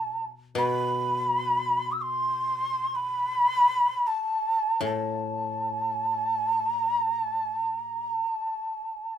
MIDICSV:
0, 0, Header, 1, 3, 480
1, 0, Start_track
1, 0, Tempo, 500000
1, 8814, End_track
2, 0, Start_track
2, 0, Title_t, "Shakuhachi"
2, 0, Program_c, 0, 77
2, 0, Note_on_c, 0, 81, 88
2, 233, Note_off_c, 0, 81, 0
2, 548, Note_on_c, 0, 83, 87
2, 1836, Note_on_c, 0, 88, 57
2, 1850, Note_off_c, 0, 83, 0
2, 1930, Note_on_c, 0, 84, 87
2, 1945, Note_off_c, 0, 88, 0
2, 2830, Note_on_c, 0, 83, 91
2, 2844, Note_off_c, 0, 84, 0
2, 3901, Note_on_c, 0, 81, 77
2, 3916, Note_off_c, 0, 83, 0
2, 4636, Note_off_c, 0, 81, 0
2, 4641, Note_on_c, 0, 81, 71
2, 6398, Note_off_c, 0, 81, 0
2, 6398, Note_on_c, 0, 82, 71
2, 6869, Note_off_c, 0, 82, 0
2, 6869, Note_on_c, 0, 81, 71
2, 7387, Note_off_c, 0, 81, 0
2, 7387, Note_on_c, 0, 82, 71
2, 7867, Note_off_c, 0, 82, 0
2, 7867, Note_on_c, 0, 81, 71
2, 8814, Note_off_c, 0, 81, 0
2, 8814, End_track
3, 0, Start_track
3, 0, Title_t, "Koto"
3, 0, Program_c, 1, 107
3, 0, Note_on_c, 1, 47, 52
3, 517, Note_off_c, 1, 47, 0
3, 529, Note_on_c, 1, 47, 55
3, 3768, Note_off_c, 1, 47, 0
3, 4614, Note_on_c, 1, 45, 53
3, 7859, Note_off_c, 1, 45, 0
3, 8814, End_track
0, 0, End_of_file